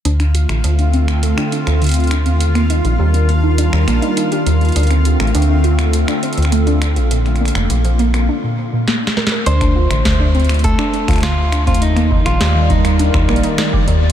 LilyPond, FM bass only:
\new Staff \with { instrumentName = "FM bass" } { \clef bass \time 4/4 \key d \phrygian \tempo 4 = 102 d,8. a,,16 d,4~ d,16 r8 d,4 ees,16~ | ees,8. bes,,16 ees,4~ ees,16 ees,16 bes,,16 r8. ees,8 | d,8. a,,16 d,4~ d,16 r8 d,4 bes,,16~ | bes,,8. f,,16 bes,,4 r2 |
d,8. a,,16 d,4~ d,16 r8 d,4 ees,16~ | ees,8. bes,,16 ees,4~ ees,16 ees,16 bes,,16 r8. ees,8 | }